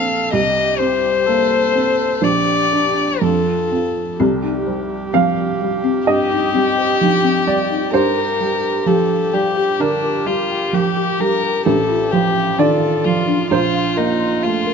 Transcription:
Already playing: upright piano A#1 A#3 C4, viola A4, violin F5
0.31 upright piano C2, viola G4, violin D#5
0.79 upright piano C4, violin C5
1.26 upright piano A#3, viola A4
1.74 upright piano C4
2.22 upright piano A#1, viola G4, violin D5
2.72 upright piano D4 G4
3.21 upright piano F2, viola F4, violin A4
3.71 upright piano C4 F4
4.19 upright piano C2, marimba C4, viola G4
4.43 marimba D#4
4.66 upright piano G3, marimba C5
5.13 upright piano F3 F5, marimba C4
5.61 upright piano G3, marimba G4
5.84 marimba C4
6.07 upright piano G2 D#5, marimba G4, violin G4
6.31 marimba D#4
6.54 upright piano G3, marimba C4
6.78 marimba C5
7.01 upright piano F3, marimba D#4
7.24 marimba C4
7.47 upright piano G3 D5
7.71 marimba D#4
7.93 upright piano G2 C5, viola G4, marimba G4, violin A#4
8.18 marimba A#4
8.40 upright piano G3, marimba G5
8.86 upright piano F3, marimba G4, violin A4
9.33 upright piano G3, violin G4, marimba D5
9.57 marimba G4
9.79 upright piano D3 A#4, violin D4, marimba D5
10.04 marimba A#4
10.26 upright piano G3, violin F4, marimba G4
10.51 marimba G5
10.73 upright piano F3, violin G4, marimba A#4
10.97 marimba G4
11.20 upright piano G3, violin A#4
11.43 marimba A#4
11.66 upright piano A1, marimba D4, violin A4
11.90 marimba F4
12.12 upright piano F3, violin G4, marimba C5
12.58 upright piano D#3 D5, marimba D4, viola F4, violin A4
13.04 upright piano F3, violin F4, marimba A4
13.28 marimba D4
13.50 upright piano A#1 C5, violin F4, marimba A#5
13.74 marimba F5
13.97 upright piano A#3, violin D#4, marimba A#4
14.20 marimba C6
14.43 upright piano A3, violin F4, marimba F5
14.66 marimba A#4

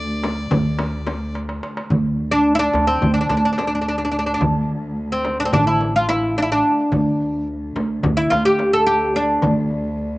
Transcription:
Already playing: upright bass D2, cello D2, oud D4, violin D5
0.24 darbuka tek, frame drum
0.51 upright bass D2, frame drum, darbuka dum
0.79 darbuka tek, frame drum
1.07 darbuka tek, frame drum
1.35 darbuka tek
1.49 darbuka ka
1.63 darbuka tek
1.77 darbuka ka
1.89 cello D2, upright bass D2, frame drum, darbuka dum
2.31 oud D4, darbuka ka
2.55 oud E4
2.59 oud D4
2.73 upright bass D2, darbuka tek, frame drum
2.87 oud C4
3.02 upright bass D2, frame drum, darbuka dum
3.14 oud D4
3.21 oud D4
3.29 upright bass D2, oud D4, darbuka tek, frame drum
3.37 oud D4
3.45 oud D4
3.53 oud D4
3.58 oud D4, darbuka tek, frame drum
3.67 oud D4
3.75 oud D4
3.81 oud D4
3.88 oud D4
3.98 oud D4
4.05 oud D4
4.12 oud D4, darbuka ka
4.19 oud D4
4.26 oud D4
4.34 oud D4
4.41 upright bass D2, frame drum, darbuka dum
4.97 darbuka ka
5.12 oud C4
5.25 darbuka tek, frame drum
5.40 oud D4
5.45 oud C4
5.52 upright bass A1, oud D4, frame drum, darbuka dum
5.67 oud E4
5.81 frame drum
5.96 oud F4
6.09 oud E4, darbuka tek, frame drum
6.38 oud D4
6.42 oud E4
6.52 oud D4
6.91 cello D2, upright bass D2, darbuka dum, frame drum
7.34 darbuka ka
7.48 darbuka ka
7.76 upright bass D2, darbuka tek, frame drum
8.03 upright bass D2, darbuka dum, frame drum
8.17 oud E4
8.30 upright bass D2, oud F4, darbuka tek, frame drum
8.45 oud G4
8.59 darbuka tek, frame drum
8.73 oud A4
8.87 oud G4
9.16 oud D4
9.42 upright bass D2, frame drum, darbuka dum
9.71 darbuka ka
9.85 darbuka ka
9.98 darbuka ka

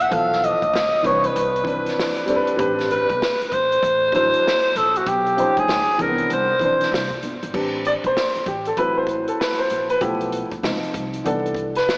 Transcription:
0.00 alto saxophone F#5, closed hi-hat
0.09 upright bass B1, grand piano E3 F3 B3 A4, kick, closed hi-hat
0.13 alto saxophone F5
0.33 snare
0.44 alto saxophone D#5, closed hi-hat
0.62 upright bass D2, kick, closed hi-hat
0.73 upright bass C#2, snare
0.94 muted upright bass stroke
1.02 upright bass C2, grand piano E3 C4 D4 B4, kick, closed hi-hat
1.06 alto saxophone C#5
1.24 alto saxophone B4, closed hi-hat
1.36 upright bass C2, closed hi-hat
1.56 closed hi-hat
1.63 grand piano E3 C4 D4 B4, kick, closed hi-hat
1.86 snare, closed hi-hat
1.99 snare
2.16 closed hi-hat
2.26 grand piano G3 C4 D4 A4, closed hi-hat
2.36 grand piano B4
2.47 closed hi-hat
2.57 upright bass A1, grand piano G3 C4 D4 B4, kick, closed hi-hat
2.79 snare, closed hi-hat
2.90 alto saxophone B4, closed hi-hat
3.10 upright bass B1, kick, closed hi-hat
3.22 snare
3.41 muted upright bass stroke, closed hi-hat
3.49 upright bass A1, alto saxophone B4, kick, closed hi-hat
3.54 alto saxophone C5
3.72 closed hi-hat
3.83 upright bass A1, kick, closed hi-hat
4.12 grand piano F#3 D4 E4 C5, alto saxophone C5, kick, closed hi-hat
4.34 closed hi-hat
4.48 snare
4.75 upright bass A#1, alto saxophone A4, closed hi-hat
4.96 alto saxophone F#4, closed hi-hat
5.06 upright bass B1, alto saxophone G4, kick, closed hi-hat
5.26 closed hi-hat
5.36 grand piano F3 C#4 D#4 C5, closed hi-hat
5.57 upright bass D2, alto saxophone G#4, kick, closed hi-hat
5.68 upright bass C#2, snare
5.87 muted upright bass stroke
5.98 upright bass C2, grand piano E3 C4 D4 G#4, alto saxophone A#4, kick, closed hi-hat
6.08 grand piano B3
6.18 closed hi-hat
6.30 upright bass C2, alto saxophone C5, closed hi-hat
6.59 upright bass B1, grand piano E3 C4 D4, kick, closed hi-hat
6.64 grand piano C5
6.81 snare, closed hi-hat
6.92 upright bass C2, snare
7.10 kick, closed hi-hat
7.22 upright bass G1, closed hi-hat
7.43 upright bass G#1, closed hi-hat
7.53 upright bass A1, grand piano G3 C4 D4 B4, kick, crash
7.85 grand piano D5, closed hi-hat
8.04 upright bass B1, grand piano C5, kick, closed hi-hat
8.17 snare
8.35 muted upright bass stroke, closed hi-hat
8.46 upright bass A1, grand piano G4, kick, closed hi-hat
8.65 grand piano A4, closed hi-hat
8.77 upright bass A1, grand piano F#3 C4 E4 B4, kick, closed hi-hat
8.98 grand piano C5
9.07 kick, closed hi-hat
9.28 grand piano A4, closed hi-hat
9.40 grand piano B4, snare
9.58 grand piano C5, closed hi-hat
9.70 upright bass A#1, closed hi-hat
9.89 grand piano B4, closed hi-hat
10.01 upright bass B1, grand piano F3 A3 B3 E4 G4, kick, closed hi-hat
10.21 closed hi-hat
10.32 closed hi-hat
10.52 upright bass D2, kick, closed hi-hat
10.63 upright bass C#2, grand piano F3 C4 D#4, snare
10.83 muted upright bass stroke, closed hi-hat
10.94 upright bass C2, kick, closed hi-hat
11.13 closed hi-hat
11.24 upright bass C2, grand piano E3 B3 D4 A4, closed hi-hat
11.46 closed hi-hat
11.54 kick, closed hi-hat
11.75 grand piano B4, snare, closed hi-hat
11.89 snare

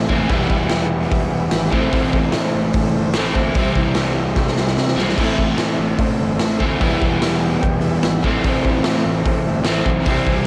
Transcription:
Already playing: overdriven electric guitar E3, transistor combo organ A4 C5 E5
0.09 fingered electric bass F1, overdriven electric guitar A3 C4 E4, kick
0.13 overdriven electric guitar A2 E3
0.27 fingered electric bass E1, overdriven electric guitar E3 G3 B3, transistor combo organ G4 B4 E5, kick, open hi-hat
0.33 overdriven electric guitar E4
0.50 fingered electric bass E1, kick
0.69 fingered electric bass E1, transistor combo organ G4 B4 E5, snare, open hi-hat
1.10 fingered electric bass E1, transistor combo organ G4 B4 E5, kick, open hi-hat
1.31 fingered electric bass E1, transistor combo organ G4 B4 E5
1.50 fingered electric bass G#1, transistor combo organ G4 B4 E5, snare, open hi-hat
1.71 fingered electric bass A1, overdriven electric guitar A2 E3 A3 C4, transistor combo organ A4 C5 E5, kick
1.75 overdriven electric guitar E4
1.92 fingered electric bass A1, kick, open hi-hat
2.13 kick
2.32 fingered electric bass A2, transistor combo organ A4 C5 E5, snare, open hi-hat
2.55 fingered electric bass A1
2.73 fingered electric bass A1, transistor combo organ A4 C5 E5, kick, open hi-hat
2.93 fingered electric bass G1, transistor combo organ A4 C5 E5
3.14 fingered electric bass A1, overdriven electric guitar A2 E3 A3 C4, transistor combo organ A4 C5 E5, snare, open hi-hat
3.19 overdriven electric guitar E4
3.35 fingered electric bass D2, kick
3.55 fingered electric bass C2, overdriven electric guitar C3 E3, transistor combo organ G4 C5 E5, kick, open hi-hat
3.59 overdriven electric guitar G3 C4 E4
3.75 fingered electric bass C2, kick
3.95 fingered electric bass C2, transistor combo organ G4 C5 E5, snare, open hi-hat
4.35 fingered electric bass C2, transistor combo organ G4 C5 E5, kick, snare
4.47 snare
4.57 fingered electric bass C2, transistor combo organ G4 C5 E5, snare
4.68 snare
4.77 fingered electric bass C3, transistor combo organ G4 C5 E5, snare
4.88 snare
4.96 fingered electric bass B1, overdriven electric guitar G3 C4 E4, snare
5.00 overdriven electric guitar C3 E3
5.09 snare
5.16 fingered electric bass A1, overdriven electric guitar A2 E3 A3, transistor combo organ A4 C5 E5, kick, open hi-hat, crash
5.20 overdriven electric guitar C4 E4
5.38 kick
5.58 fingered electric bass A2, transistor combo organ A4 C5 E5, snare, open hi-hat
5.79 fingered electric bass A1
5.96 fingered electric bass A1, transistor combo organ A4 C5 E5, kick, open hi-hat
6.18 fingered electric bass G1, transistor combo organ A4 C5 E5
6.35 fingered electric bass A1, transistor combo organ A4 C5 E5
6.39 snare, open hi-hat
6.60 fingered electric bass D2, overdriven electric guitar E3 A3 C4 E4, kick
6.64 overdriven electric guitar A2
6.79 fingered electric bass E1, overdriven electric guitar E3 G3 B3, transistor combo organ G4 B4 E5, kick, open hi-hat
6.84 overdriven electric guitar E4
7.01 fingered electric bass E1, kick
7.19 fingered electric bass E1, transistor combo organ G4 B4 E5, snare, open hi-hat
7.60 fingered electric bass E1, transistor combo organ G4 B4 G5, kick, open hi-hat
7.83 fingered electric bass E1, transistor combo organ G4 B4 E5
8.03 fingered electric bass G#1, transistor combo organ G4 B4 E5, snare, open hi-hat
8.23 fingered electric bass A1, overdriven electric guitar A2 E3 A3 C4, transistor combo organ A4 C5 E5, kick
8.28 overdriven electric guitar E4
8.44 fingered electric bass A1, kick, open hi-hat
8.65 kick
8.83 fingered electric bass A2, transistor combo organ A4 C5 E5, snare, open hi-hat
9.06 fingered electric bass A1
9.25 fingered electric bass A1, transistor combo organ A4 C5 E5, kick, open hi-hat
9.45 fingered electric bass G1, transistor combo organ A4 C5 E5
9.64 fingered electric bass A1, overdriven electric guitar A2 E3 A3 C4 E4, transistor combo organ A4 C5 E5, snare, open hi-hat
9.86 fingered electric bass B1, kick
10.05 fingered electric bass C2, overdriven electric guitar C3 E3 G3 C4, transistor combo organ G4 C5 E5, kick, open hi-hat
10.10 overdriven electric guitar E4
10.26 fingered electric bass C2, kick

